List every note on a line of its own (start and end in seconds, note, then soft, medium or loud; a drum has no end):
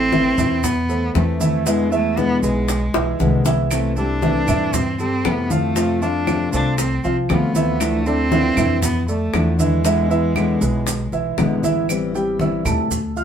0.00 0.32 A1 loud
0.00 0.12 A3 soft
0.00 0.12 C4 soft
0.00 0.66 C4 loud
0.00 0.11 E4 medium
0.12 0.33 E3 medium
0.12 0.37 E3 medium
0.12 0.37 A3 medium
0.12 0.38 C4 medium
0.12 0.33 E4 medium
0.12 0.37 E4 medium
0.12 0.34 E5 medium
0.12 high bongo medium
0.12 high conga medium
0.12 maracas soft
0.38 1.11 E2 loud
0.38 0.80 E3 medium
0.38 0.63 A3 soft
0.38 0.63 C4 medium
0.38 0.63 E4 medium
0.38 0.80 E4 medium
0.38 0.80 E5 medium
0.38 high conga soft
0.38 low conga medium
0.38 maracas medium
0.64 1.15 B3 loud
0.64 muted nylon-string guitar stroke medium
0.64 high bongo medium
0.64 high conga soft
0.64 low conga medium
0.64 maracas medium
0.89 1.31 A3 medium
0.89 1.31 A4 medium
0.89 1.32 C5 medium
0.89 high conga soft
0.89 maracas soft
1.14 2.37 E2 loud
1.14 1.39 E3 medium
1.14 1.40 A3 medium
1.14 1.69 A3 medium
1.14 1.40 C4 medium
1.14 1.38 E4 medium
1.14 high bongo medium
1.14 low bongo medium
1.14 high conga soft
1.14 maracas soft
1.40 1.61 E3 medium
1.40 1.66 A3 soft
1.40 1.66 C4 medium
1.40 1.65 E4 medium
1.40 1.62 E4 loud
1.40 1.62 E5 medium
1.40 high conga medium
1.40 maracas medium
1.65 1.90 B2 medium
1.65 1.91 D3 medium
1.65 1.87 E3 medium
1.65 1.91 G#3 medium
1.65 1.91 G#3 loud
1.65 1.91 B3 medium
1.65 1.88 E4 medium
1.65 1.90 E4 medium
1.65 1.88 E5 medium
1.65 high bongo medium
1.65 high conga soft
1.65 maracas medium
1.91 2.34 E3 medium
1.91 2.17 G#3 soft
1.91 2.20 A3 medium
1.91 2.17 B3 soft
1.91 2.16 E4 medium
1.91 2.34 E4 medium
1.91 2.34 E5 medium
1.91 high conga soft
1.91 maracas soft
2.17 2.42 B2 medium
2.17 2.42 D3 medium
2.17 2.42 G#3 medium
2.17 2.43 B3 loud
2.17 2.43 B3 medium
2.17 2.42 E4 medium
2.17 high bongo medium
2.17 high conga medium
2.17 maracas soft
2.43 2.91 B1 loud
2.43 2.85 G#3 medium
2.43 3.42 G#3 medium
2.43 2.68 G#3 soft
2.43 2.68 B3 medium
2.43 2.68 E4 soft
2.43 2.85 G#4 medium
2.43 2.85 B4 medium
2.43 high bongo soft
2.43 high conga soft
2.43 maracas medium
2.68 muted nylon-string guitar stroke medium
2.68 high bongo medium
2.68 high conga soft
2.68 maracas loud
2.94 3.18 B1 medium
2.94 3.36 E3 medium
2.94 3.37 E4 medium
2.94 3.37 E5 medium
2.94 high bongo loud
2.94 high conga soft
2.94 maracas soft
3.19 4.42 C2 medium
3.19 3.44 B2 medium
3.19 3.45 D3 medium
3.19 3.45 G#3 medium
3.19 3.45 B3 medium
3.19 3.44 E4 medium
3.19 low bongo medium
3.19 high conga medium
3.19 maracas soft
3.45 3.88 E3 medium
3.45 3.71 G#3 soft
3.45 3.71 B3 soft
3.45 3.70 E4 medium
3.45 3.88 E4 medium
3.45 3.88 E5 medium
3.45 low bongo medium
3.45 high conga medium
3.45 maracas medium
3.71 3.96 C3 medium
3.71 3.96 E3 medium
3.71 3.96 A3 medium
3.71 3.97 C4 medium
3.71 3.96 E4 medium
3.71 high bongo medium
3.71 high conga soft
3.71 claves medium
3.71 maracas medium
3.96 4.18 G3 medium
3.96 4.22 A3 soft
3.96 4.22 C4 medium
3.96 4.76 D4 loud
3.96 4.22 E4 medium
3.96 4.18 G4 medium
3.96 4.18 A4 medium
3.96 high conga soft
3.96 maracas soft
4.22 4.47 C3 medium
4.22 4.47 E3 medium
4.22 4.44 E3 medium
4.22 4.48 A3 medium
4.22 4.47 C4 medium
4.22 4.44 E4 medium
4.22 4.46 E4 medium
4.22 4.44 E5 medium
4.22 high bongo medium
4.22 high conga medium
4.22 maracas soft
4.48 5.21 G2 loud
4.48 4.90 E3 medium
4.48 4.73 A3 soft
4.48 4.73 C4 soft
4.48 4.73 E4 medium
4.48 4.91 E4 medium
4.48 4.91 E5 medium
4.48 high conga soft
4.48 low conga medium
4.48 claves medium
4.48 maracas medium
4.73 4.99 C4 medium
4.73 muted nylon-string guitar stroke medium
4.73 high bongo medium
4.73 high conga soft
4.73 low conga medium
4.73 maracas loud
4.99 5.42 G3 medium
4.99 5.27 C4 loud
4.99 5.42 G4 medium
4.99 5.42 A4 medium
4.99 high conga soft
4.99 maracas soft
5.24 6.46 F2 medium
5.24 5.49 C3 medium
5.24 5.50 E3 medium
5.24 5.50 A3 medium
5.24 5.52 B3 medium
5.24 5.50 C4 medium
5.24 5.48 E4 medium
5.24 high bongo medium
5.24 low bongo medium
5.24 high conga soft
5.24 claves medium
5.24 maracas soft
5.50 5.72 F3 medium
5.50 6.04 A3 loud
5.50 5.75 A3 soft
5.50 5.75 C4 soft
5.50 5.75 E4 medium
5.50 5.72 F4 medium
5.50 5.72 F5 medium
5.50 high conga medium
5.50 maracas medium
5.75 6.00 C3 medium
5.75 6.01 F3 medium
5.75 5.97 F3 medium
5.75 6.01 A3 medium
5.75 6.01 C4 medium
5.75 5.98 F4 medium
5.75 6.00 F4 medium
5.75 5.98 F5 medium
5.75 high bongo medium
5.75 high conga soft
5.75 maracas medium
6.01 6.44 F3 medium
6.01 6.26 A3 soft
6.01 6.26 C4 soft
6.01 6.53 D4 loud
6.01 6.26 F4 soft
6.01 6.44 F4 medium
6.01 6.44 F5 medium
6.01 high conga soft
6.01 maracas soft
6.26 6.51 C3 medium
6.26 6.52 F3 medium
6.26 6.52 A3 medium
6.26 6.52 C4 medium
6.26 6.51 F4 medium
6.26 high bongo medium
6.26 high conga medium
6.26 claves medium
6.26 maracas soft
6.52 7.01 C2 medium
6.52 6.95 A3 medium
6.52 6.77 A3 soft
6.52 6.78 C4 soft
6.52 6.77 D4 medium
6.52 6.77 F4 medium
6.52 6.95 A4 medium
6.52 6.96 C5 medium
6.52 high bongo soft
6.52 high conga soft
6.52 maracas medium
6.78 7.02 C4 medium
6.78 muted nylon-string guitar stroke medium
6.78 high bongo medium
6.78 high conga soft
6.78 maracas loud
7.04 7.28 C2 medium
7.04 7.46 F3 medium
7.04 7.16 C4 medium
7.04 7.46 F4 medium
7.04 7.47 F5 medium
7.04 high bongo soft
7.04 high conga soft
7.04 maracas soft
7.29 8.51 D2 loud
7.29 7.54 C3 medium
7.29 7.54 F3 medium
7.29 7.54 A3 medium
7.29 7.83 B3 medium
7.29 7.54 C4 medium
7.29 7.53 F4 medium
7.29 high bongo medium
7.29 low bongo medium
7.29 high conga medium
7.29 claves medium
7.29 maracas soft
7.54 7.97 E3 medium
7.54 7.80 A3 soft
7.54 7.80 C4 medium
7.54 7.98 E4 medium
7.54 7.79 F4 medium
7.54 7.98 E5 loud
7.54 high bongo soft
7.54 high conga medium
7.54 maracas medium
7.80 8.05 D3 medium
7.80 8.05 F3 medium
7.80 8.08 A3 loud
7.80 8.05 A3 medium
7.80 8.05 D4 medium
7.80 8.04 E4 medium
7.80 high bongo medium
7.80 claves medium
7.80 maracas medium
8.05 8.27 A3 medium
8.05 8.31 A3 medium
8.05 8.83 C4 loud
8.05 8.31 D4 soft
8.05 8.30 E4 medium
8.05 8.28 A4 medium
8.05 8.28 D5 medium
8.05 high conga soft
8.05 maracas soft
8.31 8.56 D3 medium
8.31 8.53 E3 medium
8.31 8.56 F3 medium
8.31 8.57 A3 medium
8.31 8.57 D4 medium
8.31 8.53 E4 medium
8.31 8.56 E4 medium
8.31 8.53 E5 medium
8.31 high bongo medium
8.31 high conga medium
8.31 maracas soft
8.57 9.30 F2 loud
8.57 8.99 E3 medium
8.57 8.82 A3 soft
8.57 8.82 D4 soft
8.57 8.82 E4 medium
8.57 8.99 E4 medium
8.57 9.00 E5 medium
8.57 high conga soft
8.57 low conga medium
8.57 claves medium
8.57 maracas medium
8.82 9.07 B3 medium
8.82 muted nylon-string guitar stroke medium
8.82 high bongo medium
8.82 high conga soft
8.82 low conga medium
8.82 maracas loud
9.08 9.50 A3 medium
9.08 9.56 A3 medium
9.08 9.51 A4 medium
9.08 9.51 D5 medium
9.08 high conga soft
9.08 maracas soft
9.33 10.55 E2 medium
9.33 9.58 D3 medium
9.33 9.58 F3 medium
9.33 9.59 A3 medium
9.33 9.58 D4 medium
9.33 9.57 E4 medium
9.33 high bongo medium
9.33 low bongo medium
9.33 high conga soft
9.33 claves medium
9.33 maracas soft
9.59 9.80 E3 medium
9.59 11.34 G#3 medium
9.59 9.84 A3 soft
9.59 9.84 D4 soft
9.59 9.84 E4 medium
9.59 9.81 E4 medium
9.59 9.81 E5 medium
9.59 high conga medium
9.59 maracas medium
9.84 10.09 B2 medium
9.84 10.09 D3 medium
9.84 10.06 E3 medium
9.84 10.10 G#3 medium
9.84 10.10 B3 medium
9.84 10.06 E4 medium
9.84 10.09 E4 medium
9.84 10.06 E5 medium
9.84 high bongo medium
9.84 high conga soft
9.84 maracas medium
10.10 10.52 E3 medium
10.10 10.35 G#3 soft
10.10 10.35 B3 medium
10.10 10.35 E4 medium
10.10 10.53 E4 medium
10.10 10.53 E5 loud
10.10 high conga soft
10.10 maracas soft
10.35 10.60 B2 medium
10.35 10.60 D3 medium
10.35 10.60 G#3 medium
10.35 10.61 B3 medium
10.35 10.59 E4 medium
10.35 high bongo medium
10.35 high conga medium
10.35 claves medium
10.35 maracas soft
10.61 11.09 B1 loud
10.61 11.03 G#3 medium
10.61 10.86 G#3 soft
10.61 10.86 B3 soft
10.61 10.86 E4 medium
10.61 11.04 G#4 medium
10.61 11.04 B4 medium
10.61 high bongo soft
10.61 high conga soft
10.61 maracas medium
10.87 muted nylon-string guitar stroke medium
10.87 high bongo medium
10.87 high conga soft
10.87 maracas loud
11.12 11.36 B1 medium
11.12 11.54 E3 medium
11.12 11.55 E4 medium
11.12 11.55 E5 medium
11.12 high bongo soft
11.12 high conga soft
11.12 maracas soft
11.37 12.59 A1 medium
11.37 11.62 B2 medium
11.37 11.62 D3 medium
11.37 11.63 G#3 medium
11.37 11.63 B3 medium
11.37 11.62 E4 medium
11.37 high bongo medium
11.37 low bongo medium
11.37 high conga medium
11.37 claves medium
11.37 maracas soft
11.63 11.84 E3 medium
11.63 11.89 G#3 soft
11.63 11.88 B3 soft
11.63 11.88 E4 medium
11.63 11.85 E4 loud
11.63 11.85 E5 medium
11.63 high bongo soft
11.63 high conga medium
11.63 maracas medium
11.89 12.13 E3 medium
11.89 12.14 G3 medium
11.89 12.14 C4 medium
11.89 12.13 E4 medium
11.89 high conga soft
11.89 claves medium
11.89 maracas medium
12.14 12.35 G3 medium
12.14 12.39 G3 soft
12.14 12.39 C4 soft
12.14 12.39 E4 medium
12.14 12.36 G4 medium
12.14 12.36 G5 medium
12.14 high conga soft
12.14 maracas soft
12.39 12.64 E3 medium
12.39 12.65 G3 medium
12.39 12.65 C4 medium
12.39 12.61 E4 medium
12.39 12.64 E4 medium
12.39 12.61 E5 medium
12.39 12.62 E6 medium
12.39 high conga loud
12.39 maracas soft
12.65 13.24 D2 loud
12.65 12.91 G3 soft
12.65 13.07 A3 medium
12.65 12.90 C4 soft
12.65 12.90 E4 medium
12.65 13.08 A4 medium
12.65 13.08 A5 medium
12.65 high conga soft
12.65 low conga medium
12.65 claves medium
12.65 maracas medium
12.91 muted nylon-string guitar stroke medium
12.91 high conga soft
12.91 low conga medium
12.91 maracas loud
13.16 13.24 F4 medium
13.16 13.24 F5 medium
13.16 13.24 F6 medium
13.16 high conga soft
13.16 maracas soft